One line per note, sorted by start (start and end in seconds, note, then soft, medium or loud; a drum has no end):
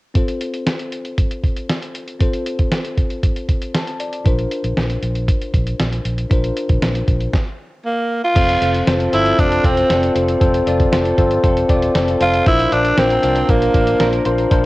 0.14 2.16 C4 medium
0.14 2.16 F4 medium
0.14 2.17 A4 medium
0.14 2.17 C5 medium
0.14 kick medium
0.14 closed hi-hat medium
0.28 closed hi-hat soft
0.41 closed hi-hat medium
0.54 closed hi-hat soft
0.67 snare medium
0.67 closed hi-hat medium
0.79 closed hi-hat soft
0.92 closed hi-hat medium
1.05 closed hi-hat soft
1.18 kick medium
1.18 closed hi-hat medium
1.31 closed hi-hat soft
1.43 kick medium
1.43 closed hi-hat medium
1.56 closed hi-hat soft
1.69 snare medium
1.69 closed hi-hat medium
1.82 closed hi-hat soft
1.95 closed hi-hat medium
2.08 closed hi-hat soft
2.20 4.21 C4 medium
2.20 4.22 F4 medium
2.20 4.22 A4 medium
2.20 4.22 C5 medium
2.20 kick loud
2.20 closed hi-hat medium
2.33 closed hi-hat soft
2.46 closed hi-hat medium
2.59 kick medium
2.59 closed hi-hat soft
2.72 snare loud
2.72 closed hi-hat medium
2.85 closed hi-hat soft
2.97 kick medium
2.97 closed hi-hat medium
3.10 closed hi-hat soft
3.23 kick medium
3.23 closed hi-hat medium
3.36 closed hi-hat soft
3.49 kick medium
3.49 closed hi-hat medium
3.62 closed hi-hat soft
3.74 3.98 A5 medium
3.74 snare loud
3.74 closed hi-hat medium
3.87 closed hi-hat soft
4.00 4.24 D5 medium
4.00 closed hi-hat medium
4.13 closed hi-hat soft
4.25 4.44 A#1 medium
4.25 6.26 D4 medium
4.25 6.27 F4 medium
4.25 6.27 A#4 medium
4.25 6.28 C5 medium
4.25 kick loud
4.25 closed hi-hat medium
4.39 closed hi-hat soft
4.51 closed hi-hat medium
4.64 4.74 A#1 medium
4.64 closed hi-hat soft
4.77 4.96 A#1 medium
4.77 snare loud
4.77 closed hi-hat medium
4.90 closed hi-hat soft
5.03 5.30 A#1 medium
5.03 closed hi-hat medium
5.15 closed hi-hat soft
5.28 kick medium
5.28 closed hi-hat medium
5.42 closed hi-hat soft
5.54 5.72 A#1 medium
5.54 kick medium
5.54 closed hi-hat medium
5.67 closed hi-hat soft
5.80 5.98 A#1 medium
5.80 snare medium
5.80 closed hi-hat medium
5.93 closed hi-hat soft
6.05 6.24 A#1 medium
6.05 closed hi-hat medium
6.18 closed hi-hat soft
6.30 6.49 A#1 medium
6.30 7.31 D4 medium
6.30 7.31 F4 medium
6.30 7.32 A#4 medium
6.30 7.32 C5 medium
6.30 kick medium
6.30 closed hi-hat medium
6.44 closed hi-hat soft
6.57 closed hi-hat medium
6.69 6.79 A#1 medium
6.69 kick medium
6.69 closed hi-hat soft
6.82 7.01 A#1 medium
6.82 snare loud
6.82 closed hi-hat medium
6.95 closed hi-hat soft
7.08 7.26 A#1 medium
7.08 kick medium
7.08 closed hi-hat medium
7.20 closed hi-hat soft
7.33 kick medium
7.33 snare medium
7.85 8.21 A#3 medium
8.24 8.84 F4 loud
8.35 8.54 F1 medium
8.35 10.41 F3 medium
8.35 8.57 C4 medium
8.35 8.57 F4 medium
8.35 8.57 A4 medium
8.35 8.58 C5 medium
8.35 kick loud
8.35 closed hi-hat medium
8.35 crash medium
8.49 closed hi-hat medium
8.61 8.80 F1 loud
8.61 8.83 C4 medium
8.61 8.83 F4 medium
8.61 9.12 F4 medium
8.61 8.83 A4 medium
8.61 8.83 C5 medium
8.61 closed hi-hat medium
8.74 closed hi-hat soft
8.87 9.06 F1 loud
8.87 9.08 C4 medium
8.87 9.08 F4 medium
8.87 9.37 A4 medium
8.87 9.09 A4 medium
8.87 9.09 C5 medium
8.87 snare loud
8.87 closed hi-hat medium
9.00 closed hi-hat soft
9.12 9.31 G1 medium
9.12 9.34 C4 medium
9.12 9.41 E4 loud
9.12 9.34 F4 medium
9.12 9.64 F4 medium
9.12 9.34 A4 medium
9.12 9.34 C5 medium
9.12 closed hi-hat medium
9.26 closed hi-hat soft
9.38 9.57 F1 medium
9.38 9.60 C4 medium
9.38 9.67 D4 medium
9.38 9.60 F4 medium
9.38 9.89 A4 medium
9.38 9.60 A4 medium
9.38 9.60 C5 medium
9.38 kick medium
9.38 closed hi-hat medium
9.52 closed hi-hat medium
9.64 9.83 E1 medium
9.64 9.85 C4 medium
9.64 10.16 C4 medium
9.64 9.85 F4 medium
9.64 10.66 F4 medium
9.64 9.86 A4 medium
9.64 9.86 C5 medium
9.64 kick medium
9.64 closed hi-hat medium
9.77 closed hi-hat medium
9.89 10.08 F1 medium
9.89 10.11 C4 medium
9.89 10.11 F4 medium
9.89 10.91 A4 medium
9.89 10.11 A4 medium
9.89 10.12 D5 medium
9.89 snare medium
9.89 closed hi-hat loud
10.03 closed hi-hat soft
10.15 10.34 F1 medium
10.15 10.36 C4 medium
10.15 12.20 C4 medium
10.15 10.37 F4 medium
10.15 10.37 A4 medium
10.15 10.37 C5 medium
10.15 closed hi-hat medium
10.29 closed hi-hat soft
10.41 10.60 F1 medium
10.41 12.46 F3 medium
10.41 10.62 C4 loud
10.41 10.62 F4 medium
10.41 10.62 A4 medium
10.41 10.63 C5 loud
10.41 kick loud
10.41 closed hi-hat loud
10.54 closed hi-hat soft
10.66 10.85 F1 medium
10.66 10.88 C4 medium
10.66 10.88 F4 medium
10.66 11.18 F4 medium
10.66 10.88 A4 medium
10.66 10.88 D5 medium
10.66 closed hi-hat medium
10.80 kick medium
10.80 closed hi-hat soft
10.92 11.11 F1 medium
10.92 11.13 C4 medium
10.92 11.14 F4 medium
10.92 11.43 A4 medium
10.92 11.14 A4 medium
10.92 11.14 C5 medium
10.92 snare loud
10.92 closed hi-hat medium
11.05 closed hi-hat soft
11.18 11.37 G1 medium
11.18 11.39 C4 loud
11.18 11.39 F4 medium
11.18 11.69 F4 medium
11.18 11.39 A4 medium
11.18 11.40 C5 loud
11.18 kick medium
11.18 closed hi-hat medium
11.31 closed hi-hat soft
11.43 11.62 F1 medium
11.43 11.65 C4 medium
11.43 11.65 F4 medium
11.43 11.94 A4 medium
11.43 11.65 A4 medium
11.43 11.65 C5 medium
11.43 kick medium
11.43 closed hi-hat medium
11.57 closed hi-hat soft
11.69 11.88 E1 medium
11.69 11.90 C4 medium
11.69 11.90 F4 medium
11.69 12.72 F4 medium
11.69 11.91 A4 medium
11.69 11.91 D5 medium
11.69 kick medium
11.69 closed hi-hat medium
11.82 closed hi-hat medium
11.94 12.14 F1 loud
11.94 12.16 C4 medium
11.94 12.16 F4 medium
11.94 12.16 A4 medium
11.94 12.52 A4 medium
11.94 12.16 C5 medium
11.94 snare loud
11.94 closed hi-hat medium
12.08 closed hi-hat soft
12.20 12.39 F1 loud
12.20 12.42 C4 medium
12.20 12.75 C4 medium
12.20 12.42 F4 medium
12.20 12.45 F4 loud
12.20 12.42 A4 medium
12.20 12.42 C5 loud
12.20 closed hi-hat medium
12.33 closed hi-hat soft
12.46 12.65 A#1 medium
12.46 14.51 F3 medium
12.46 12.67 D4 medium
12.46 12.74 E4 loud
12.46 12.67 F4 medium
12.46 12.68 A#4 medium
12.46 12.68 C5 loud
12.46 kick loud
12.46 closed hi-hat medium
12.59 closed hi-hat medium
12.71 12.90 A#1 medium
12.71 12.93 D4 medium
12.71 13.22 D4 medium
12.71 13.00 D4 medium
12.71 12.93 F4 medium
12.71 12.93 A#4 medium
12.71 12.93 C5 medium
12.71 closed hi-hat medium
12.84 closed hi-hat soft
12.97 13.16 A#1 loud
12.97 13.51 C4 medium
12.97 13.18 D4 medium
12.97 13.19 F4 medium
12.97 13.47 A#4 medium
12.97 13.19 A#4 medium
12.97 13.19 C5 medium
12.97 snare loud
12.97 closed hi-hat medium
13.10 closed hi-hat soft
13.22 13.42 C2 medium
13.22 13.44 D4 medium
13.22 13.73 D4 medium
13.22 13.44 F4 medium
13.22 13.44 A#4 medium
13.22 13.45 C5 medium
13.22 closed hi-hat medium
13.35 closed hi-hat soft
13.48 13.67 A#1 loud
13.48 14.26 A#3 medium
13.48 13.70 D4 medium
13.48 13.70 F4 medium
13.48 13.99 A#4 medium
13.48 13.70 A#4 medium
13.48 13.70 C5 medium
13.48 kick medium
13.48 closed hi-hat medium
13.62 closed hi-hat medium
13.74 13.93 A1 medium
13.74 13.95 D4 medium
13.74 14.66 D4 medium
13.74 13.96 F4 medium
13.74 13.96 A#4 medium
13.74 13.96 C5 medium
13.74 kick medium
13.74 closed hi-hat medium
13.87 closed hi-hat medium
13.99 14.18 A#1 loud
13.99 14.21 D4 medium
13.99 14.21 F4 medium
13.99 14.66 A#4 medium
13.99 14.21 A#4 medium
13.99 14.22 C5 medium
13.99 snare loud
13.99 closed hi-hat medium
14.13 closed hi-hat soft
14.25 14.44 A#1 medium
14.25 14.66 C4 medium
14.25 14.47 D4 loud
14.25 14.47 F4 loud
14.25 14.47 A#4 loud
14.25 14.47 C5 loud
14.25 closed hi-hat medium
14.38 closed hi-hat medium
14.51 14.66 A#1 loud
14.51 14.66 F3 medium
14.51 14.66 D4 loud
14.51 14.66 F4 medium
14.51 14.66 A#4 medium
14.51 14.66 C5 loud
14.51 kick loud
14.51 closed hi-hat medium